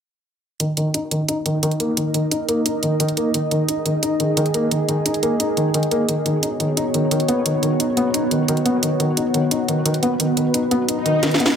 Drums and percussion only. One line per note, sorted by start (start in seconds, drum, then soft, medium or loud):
0.60 closed hi-hat medium
0.77 closed hi-hat medium
0.94 closed hi-hat medium
1.11 closed hi-hat medium
1.28 closed hi-hat loud
1.46 closed hi-hat medium
1.63 closed hi-hat medium
1.71 closed hi-hat soft
1.80 closed hi-hat medium
1.97 closed hi-hat medium
2.14 closed hi-hat medium
2.31 closed hi-hat medium
2.49 closed hi-hat medium
2.66 closed hi-hat medium
2.83 closed hi-hat medium
3.00 closed hi-hat medium
3.08 closed hi-hat soft
3.17 closed hi-hat medium
3.34 closed hi-hat medium
3.51 closed hi-hat medium
3.68 closed hi-hat medium
3.86 closed hi-hat medium
4.03 closed hi-hat medium
4.20 closed hi-hat medium
4.37 closed hi-hat medium
4.46 closed hi-hat soft
4.54 closed hi-hat medium
4.71 closed hi-hat medium
4.89 closed hi-hat medium
5.06 closed hi-hat medium
5.14 closed hi-hat soft
5.23 closed hi-hat medium
5.40 closed hi-hat medium
5.57 closed hi-hat medium
5.74 closed hi-hat medium
5.83 closed hi-hat soft
5.91 closed hi-hat medium
6.09 closed hi-hat medium
6.26 closed hi-hat medium
6.43 closed hi-hat medium
6.60 closed hi-hat medium
6.77 closed hi-hat medium
6.94 closed hi-hat medium
7.11 closed hi-hat medium
7.20 closed hi-hat soft
7.28 closed hi-hat medium
7.46 closed hi-hat medium
7.63 closed hi-hat medium
7.80 closed hi-hat medium
7.97 closed hi-hat medium
8.14 closed hi-hat medium
8.31 closed hi-hat medium
8.48 closed hi-hat medium
8.57 closed hi-hat soft
8.66 closed hi-hat medium
8.83 closed hi-hat medium
9.00 closed hi-hat medium
9.17 closed hi-hat medium
9.34 closed hi-hat medium
9.51 closed hi-hat medium
9.68 closed hi-hat medium
9.86 closed hi-hat medium
9.94 closed hi-hat soft
10.03 closed hi-hat medium
10.20 closed hi-hat medium
10.37 closed hi-hat medium
10.54 closed hi-hat medium
10.71 closed hi-hat medium
10.88 closed hi-hat loud
11.06 closed hi-hat medium
11.23 snare medium
11.23 closed hi-hat medium
11.31 snare medium
11.31 closed hi-hat soft
11.40 closed hi-hat medium
11.46 snare medium